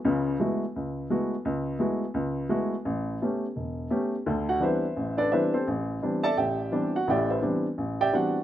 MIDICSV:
0, 0, Header, 1, 2, 480
1, 0, Start_track
1, 0, Tempo, 351494
1, 60, Time_signature, 4, 2, 24, 8
1, 11520, End_track
2, 0, Start_track
2, 0, Title_t, "Grand piano"
2, 0, Program_c, 0, 0
2, 63, Note_on_c, 0, 37, 77
2, 73, Note_on_c, 0, 49, 78
2, 475, Note_off_c, 0, 37, 0
2, 480, Note_off_c, 0, 49, 0
2, 539, Note_on_c, 0, 57, 45
2, 542, Note_on_c, 0, 56, 56
2, 552, Note_on_c, 0, 59, 48
2, 553, Note_on_c, 0, 66, 54
2, 554, Note_on_c, 0, 64, 52
2, 858, Note_off_c, 0, 57, 0
2, 859, Note_off_c, 0, 56, 0
2, 864, Note_off_c, 0, 59, 0
2, 865, Note_off_c, 0, 66, 0
2, 866, Note_off_c, 0, 64, 0
2, 1037, Note_on_c, 0, 37, 57
2, 1443, Note_off_c, 0, 37, 0
2, 1505, Note_on_c, 0, 57, 49
2, 1506, Note_on_c, 0, 56, 55
2, 1509, Note_on_c, 0, 64, 49
2, 1512, Note_on_c, 0, 59, 51
2, 1518, Note_on_c, 0, 66, 64
2, 1821, Note_off_c, 0, 57, 0
2, 1822, Note_off_c, 0, 56, 0
2, 1823, Note_off_c, 0, 64, 0
2, 1825, Note_off_c, 0, 59, 0
2, 1828, Note_off_c, 0, 66, 0
2, 1982, Note_on_c, 0, 37, 70
2, 2395, Note_off_c, 0, 37, 0
2, 2444, Note_on_c, 0, 57, 45
2, 2453, Note_on_c, 0, 59, 51
2, 2455, Note_on_c, 0, 56, 59
2, 2458, Note_on_c, 0, 66, 57
2, 2460, Note_on_c, 0, 64, 53
2, 2771, Note_off_c, 0, 57, 0
2, 2776, Note_off_c, 0, 59, 0
2, 2777, Note_off_c, 0, 56, 0
2, 2778, Note_off_c, 0, 66, 0
2, 2779, Note_off_c, 0, 64, 0
2, 2926, Note_on_c, 0, 37, 69
2, 3346, Note_off_c, 0, 37, 0
2, 3405, Note_on_c, 0, 56, 60
2, 3409, Note_on_c, 0, 57, 53
2, 3415, Note_on_c, 0, 59, 48
2, 3418, Note_on_c, 0, 66, 66
2, 3420, Note_on_c, 0, 64, 51
2, 3731, Note_off_c, 0, 56, 0
2, 3733, Note_off_c, 0, 57, 0
2, 3736, Note_off_c, 0, 59, 0
2, 3738, Note_off_c, 0, 66, 0
2, 3739, Note_off_c, 0, 64, 0
2, 3897, Note_on_c, 0, 33, 75
2, 4312, Note_off_c, 0, 33, 0
2, 4392, Note_on_c, 0, 59, 45
2, 4400, Note_on_c, 0, 57, 54
2, 4404, Note_on_c, 0, 61, 45
2, 4409, Note_on_c, 0, 67, 50
2, 4705, Note_off_c, 0, 59, 0
2, 4709, Note_off_c, 0, 57, 0
2, 4711, Note_off_c, 0, 61, 0
2, 4713, Note_off_c, 0, 67, 0
2, 4860, Note_on_c, 0, 28, 60
2, 5274, Note_off_c, 0, 28, 0
2, 5329, Note_on_c, 0, 59, 47
2, 5333, Note_on_c, 0, 57, 52
2, 5336, Note_on_c, 0, 61, 49
2, 5342, Note_on_c, 0, 67, 64
2, 5653, Note_off_c, 0, 59, 0
2, 5655, Note_off_c, 0, 57, 0
2, 5656, Note_off_c, 0, 61, 0
2, 5659, Note_off_c, 0, 67, 0
2, 5821, Note_on_c, 0, 38, 71
2, 5822, Note_on_c, 0, 50, 67
2, 6131, Note_on_c, 0, 66, 61
2, 6132, Note_on_c, 0, 78, 82
2, 6234, Note_off_c, 0, 38, 0
2, 6235, Note_off_c, 0, 50, 0
2, 6281, Note_on_c, 0, 52, 52
2, 6283, Note_on_c, 0, 55, 44
2, 6290, Note_on_c, 0, 60, 42
2, 6293, Note_on_c, 0, 59, 41
2, 6293, Note_on_c, 0, 62, 50
2, 6301, Note_off_c, 0, 66, 0
2, 6302, Note_off_c, 0, 78, 0
2, 6322, Note_on_c, 0, 64, 54
2, 6323, Note_on_c, 0, 76, 61
2, 6326, Note_on_c, 0, 71, 51
2, 6337, Note_on_c, 0, 72, 55
2, 6609, Note_off_c, 0, 52, 0
2, 6610, Note_off_c, 0, 55, 0
2, 6613, Note_off_c, 0, 60, 0
2, 6615, Note_off_c, 0, 59, 0
2, 6615, Note_off_c, 0, 62, 0
2, 6781, Note_on_c, 0, 33, 62
2, 7037, Note_off_c, 0, 64, 0
2, 7038, Note_off_c, 0, 76, 0
2, 7040, Note_off_c, 0, 71, 0
2, 7045, Note_off_c, 0, 72, 0
2, 7066, Note_on_c, 0, 62, 67
2, 7074, Note_on_c, 0, 74, 86
2, 7077, Note_on_c, 0, 69, 66
2, 7081, Note_on_c, 0, 71, 63
2, 7194, Note_off_c, 0, 33, 0
2, 7248, Note_off_c, 0, 62, 0
2, 7252, Note_off_c, 0, 74, 0
2, 7253, Note_off_c, 0, 69, 0
2, 7256, Note_off_c, 0, 71, 0
2, 7263, Note_on_c, 0, 76, 78
2, 7270, Note_on_c, 0, 64, 56
2, 7274, Note_on_c, 0, 55, 46
2, 7276, Note_on_c, 0, 52, 48
2, 7277, Note_on_c, 0, 72, 55
2, 7278, Note_on_c, 0, 59, 46
2, 7283, Note_on_c, 0, 60, 43
2, 7283, Note_on_c, 0, 71, 60
2, 7289, Note_on_c, 0, 62, 58
2, 7545, Note_off_c, 0, 60, 0
2, 7545, Note_off_c, 0, 72, 0
2, 7553, Note_off_c, 0, 76, 0
2, 7556, Note_off_c, 0, 64, 0
2, 7563, Note_off_c, 0, 71, 0
2, 7565, Note_on_c, 0, 72, 64
2, 7566, Note_on_c, 0, 60, 47
2, 7571, Note_on_c, 0, 67, 45
2, 7573, Note_on_c, 0, 69, 49
2, 7585, Note_off_c, 0, 55, 0
2, 7586, Note_off_c, 0, 52, 0
2, 7587, Note_off_c, 0, 59, 0
2, 7593, Note_off_c, 0, 62, 0
2, 7738, Note_off_c, 0, 60, 0
2, 7738, Note_off_c, 0, 72, 0
2, 7741, Note_off_c, 0, 67, 0
2, 7741, Note_off_c, 0, 69, 0
2, 7750, Note_on_c, 0, 33, 71
2, 8158, Note_off_c, 0, 33, 0
2, 8225, Note_on_c, 0, 55, 47
2, 8226, Note_on_c, 0, 52, 52
2, 8231, Note_on_c, 0, 59, 43
2, 8235, Note_on_c, 0, 60, 47
2, 8237, Note_on_c, 0, 62, 59
2, 8515, Note_on_c, 0, 81, 101
2, 8518, Note_on_c, 0, 76, 73
2, 8519, Note_on_c, 0, 69, 83
2, 8529, Note_on_c, 0, 74, 78
2, 8540, Note_off_c, 0, 52, 0
2, 8540, Note_off_c, 0, 55, 0
2, 8543, Note_off_c, 0, 59, 0
2, 8545, Note_off_c, 0, 60, 0
2, 8546, Note_off_c, 0, 62, 0
2, 8692, Note_off_c, 0, 76, 0
2, 8692, Note_off_c, 0, 81, 0
2, 8693, Note_off_c, 0, 74, 0
2, 8694, Note_off_c, 0, 69, 0
2, 8705, Note_on_c, 0, 79, 72
2, 8707, Note_on_c, 0, 33, 58
2, 8712, Note_on_c, 0, 76, 62
2, 8713, Note_on_c, 0, 74, 57
2, 8714, Note_on_c, 0, 67, 57
2, 9116, Note_off_c, 0, 33, 0
2, 9172, Note_on_c, 0, 55, 49
2, 9175, Note_on_c, 0, 52, 54
2, 9177, Note_on_c, 0, 59, 50
2, 9180, Note_on_c, 0, 60, 46
2, 9184, Note_on_c, 0, 62, 61
2, 9427, Note_off_c, 0, 79, 0
2, 9431, Note_off_c, 0, 74, 0
2, 9431, Note_off_c, 0, 76, 0
2, 9432, Note_off_c, 0, 67, 0
2, 9493, Note_off_c, 0, 55, 0
2, 9494, Note_off_c, 0, 52, 0
2, 9496, Note_off_c, 0, 59, 0
2, 9497, Note_off_c, 0, 60, 0
2, 9499, Note_off_c, 0, 62, 0
2, 9505, Note_on_c, 0, 78, 77
2, 9509, Note_on_c, 0, 66, 61
2, 9664, Note_on_c, 0, 33, 74
2, 9665, Note_on_c, 0, 45, 73
2, 9667, Note_off_c, 0, 78, 0
2, 9669, Note_off_c, 0, 66, 0
2, 9693, Note_on_c, 0, 79, 68
2, 9701, Note_on_c, 0, 76, 65
2, 9704, Note_on_c, 0, 67, 65
2, 9704, Note_on_c, 0, 74, 65
2, 9951, Note_off_c, 0, 76, 0
2, 9967, Note_off_c, 0, 79, 0
2, 9972, Note_off_c, 0, 67, 0
2, 9972, Note_on_c, 0, 71, 46
2, 9972, Note_on_c, 0, 76, 57
2, 9973, Note_off_c, 0, 74, 0
2, 9978, Note_on_c, 0, 72, 49
2, 9985, Note_on_c, 0, 64, 48
2, 10074, Note_off_c, 0, 33, 0
2, 10075, Note_off_c, 0, 45, 0
2, 10122, Note_on_c, 0, 52, 52
2, 10133, Note_on_c, 0, 59, 51
2, 10137, Note_on_c, 0, 55, 49
2, 10138, Note_on_c, 0, 60, 51
2, 10139, Note_on_c, 0, 62, 61
2, 10140, Note_off_c, 0, 71, 0
2, 10140, Note_off_c, 0, 76, 0
2, 10143, Note_off_c, 0, 72, 0
2, 10147, Note_off_c, 0, 64, 0
2, 10447, Note_off_c, 0, 52, 0
2, 10453, Note_off_c, 0, 59, 0
2, 10455, Note_off_c, 0, 55, 0
2, 10455, Note_off_c, 0, 60, 0
2, 10456, Note_off_c, 0, 62, 0
2, 10624, Note_on_c, 0, 33, 58
2, 10937, Note_on_c, 0, 74, 77
2, 10938, Note_on_c, 0, 79, 95
2, 10941, Note_on_c, 0, 76, 69
2, 10947, Note_on_c, 0, 67, 71
2, 11034, Note_off_c, 0, 33, 0
2, 11100, Note_on_c, 0, 52, 55
2, 11100, Note_on_c, 0, 59, 50
2, 11102, Note_off_c, 0, 74, 0
2, 11102, Note_off_c, 0, 79, 0
2, 11102, Note_on_c, 0, 60, 48
2, 11104, Note_off_c, 0, 76, 0
2, 11106, Note_on_c, 0, 62, 60
2, 11107, Note_off_c, 0, 67, 0
2, 11107, Note_on_c, 0, 55, 52
2, 11130, Note_on_c, 0, 66, 56
2, 11132, Note_on_c, 0, 78, 74
2, 11416, Note_off_c, 0, 52, 0
2, 11416, Note_off_c, 0, 59, 0
2, 11417, Note_off_c, 0, 60, 0
2, 11419, Note_off_c, 0, 62, 0
2, 11420, Note_off_c, 0, 55, 0
2, 11520, Note_off_c, 0, 66, 0
2, 11520, Note_off_c, 0, 78, 0
2, 11520, End_track
0, 0, End_of_file